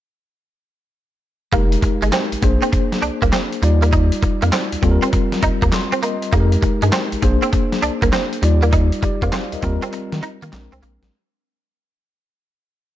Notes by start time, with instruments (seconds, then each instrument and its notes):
1.52 analog synth bass F1, tine electric piano G#3 D#4 G4 A#4, clean electric guitar A#3, kick, closed hi-hat
1.72 closed hi-hat
1.82 muted clean electric guitar stroke, kick, closed hi-hat
2.02 analog synth bass G1, clean electric guitar G#3, closed hi-hat
2.12 clean electric guitar C4, snare, clap, closed hi-hat
2.32 analog synth bass A#1, closed hi-hat
2.42 analog synth bass A#1, tine electric piano A#3 D4 G#4 C5, muted clean electric guitar stroke, kick, closed hi-hat
2.62 clean electric guitar C4, closed hi-hat
2.72 muted clean electric guitar stroke, kick, closed hi-hat
2.92 snare, closed hi-hat
3.02 analog synth bass C2, clean electric guitar D4, closed hi-hat
3.22 analog synth bass C2, clean electric guitar A#3, kick, closed hi-hat
3.33 clean electric guitar C4, snare, clap, closed hi-hat
3.53 closed hi-hat
3.62 analog synth bass D#2, tine electric piano G3 D#4 F4 D5, muted clean electric guitar stroke, closed hi-hat
3.82 clean electric guitar A#3, closed hi-hat
3.93 clean electric guitar D#4, kick, closed hi-hat
4.12 closed hi-hat
4.22 muted clean electric guitar stroke, kick, closed hi-hat
4.42 analog synth bass F2, clean electric guitar A#3, closed hi-hat
4.53 clean electric guitar C4, snare, clap, closed hi-hat
4.72 analog synth bass D#2, closed hi-hat
4.82 analog synth bass D#2, tine electric piano G3 C4 F4 A4, muted clean electric guitar stroke, kick, closed hi-hat
4.91 tine electric piano A#4
5.02 clean electric guitar C4, closed hi-hat
5.13 muted clean electric guitar stroke, kick, closed hi-hat
5.32 snare, closed hi-hat
5.43 analog synth bass D#2, clean electric guitar D#4, kick, closed hi-hat
5.62 analog synth bass D#2, clean electric guitar A#3, kick, closed hi-hat
5.72 tine electric piano C6, muted clean electric guitar stroke, snare, clap, closed hi-hat
5.92 clean electric guitar C4, closed hi-hat
6.03 clean electric guitar A#3, tine electric piano D#5, closed hi-hat
6.22 closed hi-hat
6.33 analog synth bass F2, tine electric piano G#3 D#4 G4 A4, clean electric guitar A#3, kick, closed hi-hat
6.40 tine electric piano A#4
6.52 closed hi-hat
6.62 muted clean electric guitar stroke, kick, closed hi-hat
6.82 analog synth bass G2, clean electric guitar G#3, closed hi-hat
6.92 clean electric guitar C4, snare, clap, closed hi-hat
7.12 analog synth bass A#1, closed hi-hat
7.22 analog synth bass A#1, tine electric piano A#3 D4 G#4 C5, muted clean electric guitar stroke, kick, closed hi-hat
7.42 clean electric guitar C4, closed hi-hat
7.53 muted clean electric guitar stroke, kick, closed hi-hat
7.72 snare, closed hi-hat
7.82 analog synth bass C2, clean electric guitar D4, closed hi-hat
8.02 analog synth bass C2, clean electric guitar A#3, kick, closed hi-hat
8.13 clean electric guitar C4, snare, clap, closed hi-hat
8.33 closed hi-hat
8.42 analog synth bass D#2, tine electric piano G3 D#4 F4 D5, muted clean electric guitar stroke, closed hi-hat
8.62 clean electric guitar A#3, closed hi-hat
8.73 clean electric guitar D#4, kick, closed hi-hat
8.92 closed hi-hat
9.03 tine electric piano G4 D5, muted clean electric guitar stroke, kick, closed hi-hat
9.22 analog synth bass F2, clean electric guitar A#3, tine electric piano C5 F5, kick, closed hi-hat
9.32 clean electric guitar C4, snare, clap, closed hi-hat
9.52 analog synth bass D#2, tine electric piano A#4 D#5, closed hi-hat
9.62 analog synth bass D#2, tine electric piano G3 C4 F4 A#4, muted clean electric guitar stroke, kick, closed hi-hat
9.82 clean electric guitar C4, closed hi-hat
9.93 muted clean electric guitar stroke, closed hi-hat
10.12 analog synth bass D#3, snare, closed hi-hat
10.23 clean electric guitar D#4, closed hi-hat
10.42 analog synth bass D#3, clean electric guitar A#3, closed hi-hat
10.53 analog synth bass A#1, tine electric piano G#3 C4 D4 A#4, muted clean electric guitar stroke, snare, clap, closed hi-hat
10.72 analog synth bass C2, clean electric guitar C4, closed hi-hat
10.82 analog synth bass A#1, clean electric guitar A#3, closed hi-hat
11.02 analog synth bass A1, snare, closed hi-hat